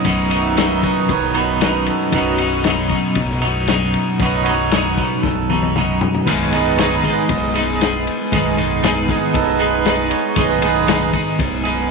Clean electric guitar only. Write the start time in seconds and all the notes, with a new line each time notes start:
0.05 B1 F#2 B2 F#3 D#4
0.30 B2 F#3 D#4
0.55 B1 F#2 B2 F#3 D#4
0.82 B2 F#3 D#4
1.34 B2 F#3 D#4
1.61 F#2 B2 F#3 D#4
2.12 B1 F#2 B2 F#3 D#4
2.39 B2 F#3 D#4
2.64 B1 F#2 B2 F#3 D#4
2.89 B2 F#3 D#4
3.42 B2 F#3 D#4
3.67 F#2 B2 F#3 D#4
4.20 B1 F#2 B2 F#3 D#4
4.46 B2 F#3 D#4
4.72 B1 F#2 B2 F#3 D#4
4.98 B2 F#3 D#4
5.50 B2 F#3 D#4
5.75 F#2 B2 F#3 D#4
6.27 G#2 D#3 G#3 B3 D#4 G#4
6.53 G#3 B3 D#4 G#4
6.78 G#2 D#3 G#3 B3 D#4 G#4
7.04 G#3 B3 D#4 G#4
7.54 G#3 B3 D#4 G#4
7.81 G#3 B3 D#4 G#4
8.32 G#2 D#3 G#3 B3 D#4 G#4
8.57 G#3 B3 D#4 G#4
8.82 G#2 D#3 G#3 B3 D#4 G#4
9.08 G#3 B3 D#4 G#4
9.59 G#3 B3 D#4 G#4
9.85 G#3 B3 D#4 G#4
10.36 G#2 D#3 G#3 B3 D#4 G#4
10.61 G#3 B3 D#4 G#4
10.86 G#2 D#3 G#3 B3 D#4 G#4
11.13 G#3 B3 D#4 G#4
11.64 G#3 B3 D#4 G#4